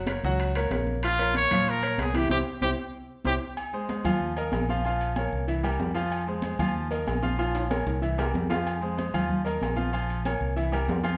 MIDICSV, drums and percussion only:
0, 0, Header, 1, 2, 480
1, 0, Start_track
1, 0, Key_signature, -4, "minor"
1, 0, Tempo, 317965
1, 1549, Time_signature, 4, 2, 24, 8
1, 16864, End_track
2, 0, Start_track
2, 0, Title_t, "Drums"
2, 100, Note_on_c, 9, 63, 91
2, 108, Note_on_c, 9, 65, 90
2, 108, Note_on_c, 9, 66, 53
2, 251, Note_off_c, 9, 63, 0
2, 259, Note_off_c, 9, 65, 0
2, 259, Note_off_c, 9, 66, 0
2, 345, Note_on_c, 9, 63, 35
2, 496, Note_off_c, 9, 63, 0
2, 589, Note_on_c, 9, 63, 35
2, 598, Note_on_c, 9, 65, 70
2, 740, Note_off_c, 9, 63, 0
2, 749, Note_off_c, 9, 65, 0
2, 832, Note_on_c, 9, 63, 34
2, 836, Note_on_c, 9, 65, 88
2, 983, Note_off_c, 9, 63, 0
2, 987, Note_off_c, 9, 65, 0
2, 1070, Note_on_c, 9, 63, 83
2, 1076, Note_on_c, 9, 65, 68
2, 1076, Note_on_c, 9, 66, 79
2, 1221, Note_off_c, 9, 63, 0
2, 1227, Note_off_c, 9, 65, 0
2, 1227, Note_off_c, 9, 66, 0
2, 1311, Note_on_c, 9, 63, 78
2, 1462, Note_off_c, 9, 63, 0
2, 1553, Note_on_c, 9, 65, 101
2, 1555, Note_on_c, 9, 63, 37
2, 1704, Note_off_c, 9, 65, 0
2, 1706, Note_off_c, 9, 63, 0
2, 1792, Note_on_c, 9, 63, 37
2, 1794, Note_on_c, 9, 65, 74
2, 1943, Note_off_c, 9, 63, 0
2, 1945, Note_off_c, 9, 65, 0
2, 2029, Note_on_c, 9, 63, 93
2, 2034, Note_on_c, 9, 65, 67
2, 2034, Note_on_c, 9, 66, 56
2, 2180, Note_off_c, 9, 63, 0
2, 2185, Note_off_c, 9, 65, 0
2, 2185, Note_off_c, 9, 66, 0
2, 2279, Note_on_c, 9, 65, 99
2, 2283, Note_on_c, 9, 63, 36
2, 2283, Note_on_c, 9, 64, 86
2, 2430, Note_off_c, 9, 65, 0
2, 2434, Note_off_c, 9, 63, 0
2, 2434, Note_off_c, 9, 64, 0
2, 2515, Note_on_c, 9, 63, 34
2, 2666, Note_off_c, 9, 63, 0
2, 2758, Note_on_c, 9, 65, 73
2, 2760, Note_on_c, 9, 63, 38
2, 2909, Note_off_c, 9, 65, 0
2, 2911, Note_off_c, 9, 63, 0
2, 2992, Note_on_c, 9, 63, 81
2, 3003, Note_on_c, 9, 65, 88
2, 3003, Note_on_c, 9, 66, 86
2, 3143, Note_off_c, 9, 63, 0
2, 3154, Note_off_c, 9, 65, 0
2, 3154, Note_off_c, 9, 66, 0
2, 3229, Note_on_c, 9, 63, 97
2, 3240, Note_on_c, 9, 65, 77
2, 3380, Note_off_c, 9, 63, 0
2, 3391, Note_off_c, 9, 65, 0
2, 3465, Note_on_c, 9, 63, 99
2, 3482, Note_on_c, 9, 65, 100
2, 3616, Note_off_c, 9, 63, 0
2, 3633, Note_off_c, 9, 65, 0
2, 3947, Note_on_c, 9, 63, 101
2, 3954, Note_on_c, 9, 65, 101
2, 4098, Note_off_c, 9, 63, 0
2, 4105, Note_off_c, 9, 65, 0
2, 4899, Note_on_c, 9, 63, 91
2, 4909, Note_on_c, 9, 65, 108
2, 5050, Note_off_c, 9, 63, 0
2, 5060, Note_off_c, 9, 65, 0
2, 5390, Note_on_c, 9, 68, 108
2, 5395, Note_on_c, 9, 63, 38
2, 5541, Note_off_c, 9, 68, 0
2, 5546, Note_off_c, 9, 63, 0
2, 5629, Note_on_c, 9, 63, 33
2, 5780, Note_off_c, 9, 63, 0
2, 5874, Note_on_c, 9, 63, 88
2, 5878, Note_on_c, 9, 66, 63
2, 5878, Note_on_c, 9, 68, 66
2, 6025, Note_off_c, 9, 63, 0
2, 6029, Note_off_c, 9, 66, 0
2, 6029, Note_off_c, 9, 68, 0
2, 6114, Note_on_c, 9, 63, 37
2, 6114, Note_on_c, 9, 64, 92
2, 6115, Note_on_c, 9, 68, 115
2, 6265, Note_off_c, 9, 63, 0
2, 6265, Note_off_c, 9, 64, 0
2, 6266, Note_off_c, 9, 68, 0
2, 6353, Note_on_c, 9, 63, 36
2, 6504, Note_off_c, 9, 63, 0
2, 6584, Note_on_c, 9, 63, 31
2, 6590, Note_on_c, 9, 68, 78
2, 6735, Note_off_c, 9, 63, 0
2, 6741, Note_off_c, 9, 68, 0
2, 6820, Note_on_c, 9, 63, 84
2, 6835, Note_on_c, 9, 66, 86
2, 6835, Note_on_c, 9, 68, 115
2, 6971, Note_off_c, 9, 63, 0
2, 6986, Note_off_c, 9, 66, 0
2, 6986, Note_off_c, 9, 68, 0
2, 7074, Note_on_c, 9, 63, 83
2, 7225, Note_off_c, 9, 63, 0
2, 7314, Note_on_c, 9, 63, 37
2, 7315, Note_on_c, 9, 68, 82
2, 7465, Note_off_c, 9, 63, 0
2, 7466, Note_off_c, 9, 68, 0
2, 7549, Note_on_c, 9, 63, 37
2, 7562, Note_on_c, 9, 68, 74
2, 7700, Note_off_c, 9, 63, 0
2, 7713, Note_off_c, 9, 68, 0
2, 7791, Note_on_c, 9, 63, 96
2, 7794, Note_on_c, 9, 66, 63
2, 7794, Note_on_c, 9, 68, 102
2, 7942, Note_off_c, 9, 63, 0
2, 7945, Note_off_c, 9, 66, 0
2, 7945, Note_off_c, 9, 68, 0
2, 8040, Note_on_c, 9, 63, 36
2, 8191, Note_off_c, 9, 63, 0
2, 8275, Note_on_c, 9, 63, 34
2, 8275, Note_on_c, 9, 68, 68
2, 8426, Note_off_c, 9, 63, 0
2, 8426, Note_off_c, 9, 68, 0
2, 8513, Note_on_c, 9, 63, 31
2, 8520, Note_on_c, 9, 68, 112
2, 8664, Note_off_c, 9, 63, 0
2, 8671, Note_off_c, 9, 68, 0
2, 8751, Note_on_c, 9, 63, 82
2, 8751, Note_on_c, 9, 66, 82
2, 8902, Note_off_c, 9, 63, 0
2, 8902, Note_off_c, 9, 66, 0
2, 8999, Note_on_c, 9, 68, 83
2, 9150, Note_off_c, 9, 68, 0
2, 9234, Note_on_c, 9, 68, 103
2, 9235, Note_on_c, 9, 63, 39
2, 9385, Note_off_c, 9, 63, 0
2, 9385, Note_off_c, 9, 68, 0
2, 9466, Note_on_c, 9, 63, 35
2, 9617, Note_off_c, 9, 63, 0
2, 9695, Note_on_c, 9, 63, 96
2, 9711, Note_on_c, 9, 66, 59
2, 9711, Note_on_c, 9, 68, 67
2, 9846, Note_off_c, 9, 63, 0
2, 9862, Note_off_c, 9, 66, 0
2, 9862, Note_off_c, 9, 68, 0
2, 9952, Note_on_c, 9, 63, 38
2, 9952, Note_on_c, 9, 64, 89
2, 9953, Note_on_c, 9, 68, 107
2, 10103, Note_off_c, 9, 63, 0
2, 10103, Note_off_c, 9, 64, 0
2, 10104, Note_off_c, 9, 68, 0
2, 10193, Note_on_c, 9, 63, 37
2, 10344, Note_off_c, 9, 63, 0
2, 10423, Note_on_c, 9, 63, 35
2, 10439, Note_on_c, 9, 68, 75
2, 10574, Note_off_c, 9, 63, 0
2, 10590, Note_off_c, 9, 68, 0
2, 10671, Note_on_c, 9, 63, 78
2, 10681, Note_on_c, 9, 66, 81
2, 10681, Note_on_c, 9, 68, 99
2, 10822, Note_off_c, 9, 63, 0
2, 10832, Note_off_c, 9, 66, 0
2, 10832, Note_off_c, 9, 68, 0
2, 10910, Note_on_c, 9, 63, 89
2, 11061, Note_off_c, 9, 63, 0
2, 11156, Note_on_c, 9, 65, 76
2, 11156, Note_on_c, 9, 68, 93
2, 11159, Note_on_c, 9, 63, 38
2, 11307, Note_off_c, 9, 65, 0
2, 11307, Note_off_c, 9, 68, 0
2, 11310, Note_off_c, 9, 63, 0
2, 11395, Note_on_c, 9, 65, 105
2, 11395, Note_on_c, 9, 68, 74
2, 11398, Note_on_c, 9, 63, 39
2, 11546, Note_off_c, 9, 65, 0
2, 11546, Note_off_c, 9, 68, 0
2, 11549, Note_off_c, 9, 63, 0
2, 11635, Note_on_c, 9, 66, 77
2, 11635, Note_on_c, 9, 68, 107
2, 11640, Note_on_c, 9, 63, 97
2, 11786, Note_off_c, 9, 66, 0
2, 11786, Note_off_c, 9, 68, 0
2, 11791, Note_off_c, 9, 63, 0
2, 11879, Note_on_c, 9, 65, 76
2, 11887, Note_on_c, 9, 63, 33
2, 12030, Note_off_c, 9, 65, 0
2, 12038, Note_off_c, 9, 63, 0
2, 12122, Note_on_c, 9, 68, 71
2, 12126, Note_on_c, 9, 63, 36
2, 12273, Note_off_c, 9, 68, 0
2, 12277, Note_off_c, 9, 63, 0
2, 12362, Note_on_c, 9, 66, 97
2, 12362, Note_on_c, 9, 68, 122
2, 12363, Note_on_c, 9, 63, 36
2, 12512, Note_off_c, 9, 66, 0
2, 12512, Note_off_c, 9, 68, 0
2, 12514, Note_off_c, 9, 63, 0
2, 12604, Note_on_c, 9, 63, 75
2, 12610, Note_on_c, 9, 66, 80
2, 12755, Note_off_c, 9, 63, 0
2, 12761, Note_off_c, 9, 66, 0
2, 12843, Note_on_c, 9, 63, 76
2, 12845, Note_on_c, 9, 66, 92
2, 12845, Note_on_c, 9, 68, 91
2, 12994, Note_off_c, 9, 63, 0
2, 12996, Note_off_c, 9, 66, 0
2, 12996, Note_off_c, 9, 68, 0
2, 13084, Note_on_c, 9, 68, 106
2, 13085, Note_on_c, 9, 63, 39
2, 13235, Note_off_c, 9, 68, 0
2, 13236, Note_off_c, 9, 63, 0
2, 13326, Note_on_c, 9, 63, 34
2, 13477, Note_off_c, 9, 63, 0
2, 13562, Note_on_c, 9, 66, 61
2, 13562, Note_on_c, 9, 68, 68
2, 13566, Note_on_c, 9, 63, 84
2, 13713, Note_off_c, 9, 66, 0
2, 13713, Note_off_c, 9, 68, 0
2, 13717, Note_off_c, 9, 63, 0
2, 13801, Note_on_c, 9, 68, 104
2, 13811, Note_on_c, 9, 63, 34
2, 13811, Note_on_c, 9, 64, 79
2, 13952, Note_off_c, 9, 68, 0
2, 13962, Note_off_c, 9, 63, 0
2, 13962, Note_off_c, 9, 64, 0
2, 14034, Note_on_c, 9, 63, 32
2, 14034, Note_on_c, 9, 64, 72
2, 14185, Note_off_c, 9, 63, 0
2, 14185, Note_off_c, 9, 64, 0
2, 14281, Note_on_c, 9, 63, 34
2, 14294, Note_on_c, 9, 68, 74
2, 14432, Note_off_c, 9, 63, 0
2, 14445, Note_off_c, 9, 68, 0
2, 14517, Note_on_c, 9, 63, 75
2, 14532, Note_on_c, 9, 66, 84
2, 14532, Note_on_c, 9, 68, 110
2, 14668, Note_off_c, 9, 63, 0
2, 14683, Note_off_c, 9, 66, 0
2, 14683, Note_off_c, 9, 68, 0
2, 14765, Note_on_c, 9, 63, 88
2, 14916, Note_off_c, 9, 63, 0
2, 14999, Note_on_c, 9, 63, 38
2, 15007, Note_on_c, 9, 68, 90
2, 15150, Note_off_c, 9, 63, 0
2, 15158, Note_off_c, 9, 68, 0
2, 15245, Note_on_c, 9, 68, 68
2, 15253, Note_on_c, 9, 63, 38
2, 15396, Note_off_c, 9, 68, 0
2, 15404, Note_off_c, 9, 63, 0
2, 15479, Note_on_c, 9, 63, 91
2, 15488, Note_on_c, 9, 66, 60
2, 15488, Note_on_c, 9, 68, 117
2, 15630, Note_off_c, 9, 63, 0
2, 15639, Note_off_c, 9, 66, 0
2, 15639, Note_off_c, 9, 68, 0
2, 15727, Note_on_c, 9, 63, 35
2, 15878, Note_off_c, 9, 63, 0
2, 15963, Note_on_c, 9, 68, 65
2, 15964, Note_on_c, 9, 63, 37
2, 16114, Note_off_c, 9, 68, 0
2, 16115, Note_off_c, 9, 63, 0
2, 16202, Note_on_c, 9, 68, 113
2, 16213, Note_on_c, 9, 63, 38
2, 16353, Note_off_c, 9, 68, 0
2, 16364, Note_off_c, 9, 63, 0
2, 16434, Note_on_c, 9, 63, 82
2, 16443, Note_on_c, 9, 66, 91
2, 16585, Note_off_c, 9, 63, 0
2, 16594, Note_off_c, 9, 66, 0
2, 16674, Note_on_c, 9, 68, 94
2, 16675, Note_on_c, 9, 63, 76
2, 16825, Note_off_c, 9, 68, 0
2, 16826, Note_off_c, 9, 63, 0
2, 16864, End_track
0, 0, End_of_file